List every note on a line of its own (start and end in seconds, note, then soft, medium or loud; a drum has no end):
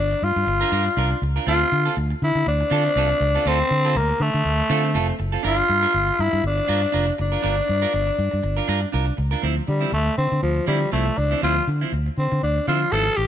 0.00 0.13 G1 medium
0.00 0.25 D4 medium
0.11 muted clean electric guitar stroke soft
0.23 0.31 G2 medium
0.23 1.23 F4 medium
0.36 0.43 G2 medium
0.36 muted clean electric guitar stroke medium
0.47 0.63 G1 loud
0.47 muted clean electric guitar stroke soft
0.61 0.70 D4 medium
0.61 0.71 F4 medium
0.61 0.72 A#4 medium
0.71 0.88 G2 medium
0.71 0.88 D4 medium
0.71 0.85 F4 medium
0.71 0.85 A#4 medium
0.86 muted clean electric guitar stroke soft
0.97 1.13 C2 loud
0.97 1.17 D4 medium
0.97 1.11 F4 medium
0.97 1.10 A#4 medium
1.11 muted clean electric guitar stroke soft
1.22 1.37 C#2 medium
1.22 muted clean electric guitar stroke soft
1.36 1.46 D4 soft
1.36 1.47 F4 medium
1.36 1.48 A#4 medium
1.47 1.62 D2 loud
1.47 1.67 C4 medium
1.47 1.61 F4 loud
1.47 1.94 F4 loud
1.47 1.60 A4 loud
1.61 muted clean electric guitar stroke soft
1.72 1.87 D3 medium
1.72 muted clean electric guitar stroke soft
1.86 1.96 C4 medium
1.86 1.96 F4 medium
1.86 1.97 A4 medium
1.97 2.12 D2 medium
1.97 muted clean electric guitar stroke soft
2.10 muted clean electric guitar stroke soft
2.22 2.31 D3 loud
2.22 2.46 E4 medium
2.35 2.42 D3 medium
2.35 muted clean electric guitar stroke medium
2.47 2.62 D2 medium
2.47 3.49 D4 loud
2.61 muted clean electric guitar stroke medium
2.70 2.87 D3 loud
2.70 2.91 C4 medium
2.70 2.85 F4 medium
2.70 2.84 A4 loud
2.85 muted clean electric guitar stroke soft
2.96 3.11 C2 loud
2.96 3.16 C4 medium
2.96 3.10 F4 medium
2.96 3.09 A4 medium
3.11 muted clean electric guitar stroke soft
3.21 3.36 C#2 medium
3.21 muted clean electric guitar stroke soft
3.35 3.44 C4 soft
3.35 3.45 F4 medium
3.35 3.46 A4 medium
3.46 3.61 D2 loud
3.46 3.66 C4 medium
3.46 3.99 C4 loud
3.46 3.60 F4 medium
3.46 3.59 A4 medium
3.60 muted clean electric guitar stroke soft
3.71 3.97 D3 medium
3.71 muted clean electric guitar stroke soft
3.85 3.94 C4 medium
3.85 3.95 F4 medium
3.85 3.95 A4 medium
3.95 4.11 D2 loud
3.95 4.23 A#3 medium
3.95 muted clean electric guitar stroke soft
4.09 muted clean electric guitar stroke soft
4.20 4.29 D3 loud
4.20 5.20 A3 medium
4.34 4.41 D3 medium
4.34 muted clean electric guitar stroke soft
4.45 4.61 D2 loud
4.59 muted clean electric guitar stroke soft
4.70 4.96 D3 loud
4.70 4.90 C4 loud
4.70 4.83 F4 loud
4.70 4.82 A4 loud
4.84 muted clean electric guitar stroke soft
4.94 5.10 F1 loud
4.94 5.15 C4 medium
4.94 5.08 F4 medium
4.94 5.07 A4 medium
5.08 muted clean electric guitar stroke soft
5.19 5.35 F#1 medium
5.19 muted clean electric guitar stroke soft
5.32 5.42 C4 medium
5.32 5.43 F4 medium
5.32 5.44 A4 medium
5.43 5.60 G1 loud
5.43 5.64 D4 medium
5.43 5.58 F4 medium
5.43 6.23 F4 loud
5.43 5.57 A#4 loud
5.58 muted clean electric guitar stroke soft
5.69 5.85 G2 medium
5.69 muted clean electric guitar stroke soft
5.82 5.93 D4 medium
5.82 5.93 F4 medium
5.82 5.94 A#4 medium
5.94 6.10 G1 medium
5.94 muted clean electric guitar stroke soft
6.07 muted clean electric guitar stroke soft
6.19 6.28 G2 loud
6.19 6.45 E4 loud
6.32 6.40 G2 medium
6.32 muted clean electric guitar stroke medium
6.44 6.59 G1 loud
6.44 7.16 D4 medium
6.58 muted clean electric guitar stroke soft
6.67 6.85 G2 medium
6.67 6.88 D4 medium
6.67 6.82 F4 loud
6.67 6.81 A#4 medium
6.82 muted clean electric guitar stroke soft
6.92 7.10 F1 medium
6.92 7.13 D4 medium
6.92 7.07 F4 medium
6.92 7.06 A#4 medium
7.07 muted clean electric guitar stroke soft
7.18 7.35 F#1 medium
7.18 8.91 D4 medium
7.18 muted clean electric guitar stroke soft
7.32 7.41 D4 medium
7.32 7.42 F4 medium
7.32 7.42 A#4 medium
7.42 7.60 G1 loud
7.42 7.63 D4 medium
7.42 7.56 F4 medium
7.42 7.56 A#4 medium
7.57 muted clean electric guitar stroke soft
7.68 7.85 G2 medium
7.68 muted clean electric guitar stroke soft
7.82 7.92 D4 medium
7.82 7.93 F4 medium
7.82 7.94 A#4 medium
7.93 8.09 G1 medium
7.93 muted clean electric guitar stroke soft
8.07 muted clean electric guitar stroke soft
8.19 8.27 G2 loud
8.31 8.40 G2 medium
8.31 muted clean electric guitar stroke soft
8.43 8.59 G1 medium
8.43 muted clean electric guitar stroke soft
8.57 8.66 D4 medium
8.57 8.67 F4 medium
8.57 8.68 A#4 medium
8.68 8.84 G2 medium
8.68 8.88 D4 medium
8.68 8.81 F4 medium
8.68 8.80 A#4 loud
8.81 muted clean electric guitar stroke soft
8.92 9.09 C2 loud
8.92 9.13 D4 medium
8.92 9.07 F4 medium
8.92 9.06 A#4 medium
9.07 muted clean electric guitar stroke soft
9.17 9.34 C#2 medium
9.17 muted clean electric guitar stroke soft
9.31 9.43 D4 medium
9.31 9.43 F4 medium
9.31 9.46 A#4 medium
9.42 9.59 D2 medium
9.42 9.63 F3 medium
9.42 9.56 C4 medium
9.42 9.55 E4 medium
9.56 muted clean electric guitar stroke soft
9.67 9.84 D3 medium
9.67 9.91 G3 medium
9.67 muted clean electric guitar stroke soft
9.81 9.91 F3 medium
9.81 9.91 C4 medium
9.81 9.92 E4 medium
9.92 10.08 D2 loud
9.92 10.16 A3 medium
9.92 muted clean electric guitar stroke soft
10.06 muted clean electric guitar stroke soft
10.18 10.27 D3 medium
10.18 10.41 C4 medium
10.30 10.39 D3 medium
10.30 muted clean electric guitar stroke soft
10.42 10.58 D2 loud
10.42 10.66 F3 medium
10.56 muted clean electric guitar stroke soft
10.66 10.83 D3 medium
10.66 10.87 F3 medium
10.66 10.91 G3 medium
10.66 10.80 C4 medium
10.66 10.79 E4 loud
10.81 muted clean electric guitar stroke soft
10.92 11.08 C2 medium
10.92 11.12 F3 medium
10.92 11.19 A3 medium
10.92 11.06 C4 medium
10.92 11.05 E4 medium
11.06 muted clean electric guitar stroke soft
11.17 11.33 C#2 medium
11.17 11.42 D4 medium
11.17 muted clean electric guitar stroke soft
11.31 11.41 F3 medium
11.31 11.42 C4 medium
11.31 11.43 E4 medium
11.42 11.58 D2 loud
11.42 11.62 F3 medium
11.42 11.56 C4 medium
11.42 11.55 E4 medium
11.42 11.66 F4 medium
11.56 muted clean electric guitar stroke soft
11.68 11.83 D3 loud
11.68 muted clean electric guitar stroke soft
11.81 11.92 F3 medium
11.81 11.92 C4 medium
11.81 11.93 E4 medium
11.93 12.08 D2 medium
11.93 muted clean electric guitar stroke soft
12.06 muted clean electric guitar stroke soft
12.18 12.26 D3 medium
12.18 12.41 C4 medium
12.32 12.39 D3 medium
12.32 muted clean electric guitar stroke soft
12.43 12.58 D2 medium
12.43 12.66 D4 medium
12.56 muted clean electric guitar stroke soft
12.67 12.83 D3 medium
12.67 12.88 F3 medium
12.67 12.81 C4 medium
12.67 12.81 E4 medium
12.67 12.94 F4 medium
12.82 muted clean electric guitar stroke soft
12.92 13.08 G#1 loud
12.92 13.12 F3 medium
12.92 13.06 C4 medium
12.92 13.05 E4 medium
12.92 13.18 A4 loud
13.06 muted clean electric guitar stroke soft
13.17 13.27 A1 medium
13.17 13.27 G4 loud
13.17 muted clean electric guitar stroke medium